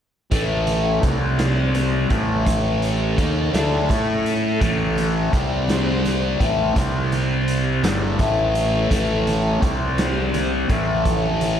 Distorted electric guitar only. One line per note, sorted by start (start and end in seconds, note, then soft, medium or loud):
0.31 1.02 A2 medium
0.31 1.03 E3 medium
0.31 1.03 A3 loud
1.03 2.09 C3 medium
1.03 2.10 G3 medium
1.03 2.10 C4 medium
2.10 3.17 A2 medium
2.10 3.17 E3 medium
2.10 3.18 A3 loud
3.17 3.53 D#3 medium
3.17 3.53 A#3 medium
3.17 3.53 D#4 loud
3.53 3.89 D3 medium
3.53 3.88 A3 medium
3.53 3.89 D4 loud
3.89 4.60 A3 medium
3.89 4.60 E4 medium
3.89 4.61 A4 loud
4.61 5.32 A2 medium
4.61 5.32 E3 medium
4.61 5.32 A3 loud
5.32 6.39 C3 medium
5.32 6.39 G3 loud
5.32 6.40 C4 loud
6.40 6.75 A2 loud
6.40 6.75 E3 loud
6.40 6.76 A3 medium
6.76 7.82 C3 medium
6.76 7.82 G3 loud
6.76 7.83 C4 loud
7.83 8.18 G2 medium
7.83 8.18 D3 medium
7.83 8.18 G3 medium
8.19 8.89 A2 medium
8.19 8.90 E3 medium
8.19 8.90 A3 medium
8.90 9.61 A2 medium
8.90 9.61 E3 medium
8.90 9.62 A3 loud
9.62 10.68 C3 loud
9.62 10.68 G3 loud
9.62 10.69 C4 loud
10.69 11.60 A2 medium
10.69 11.60 E3 medium
10.69 11.60 A3 loud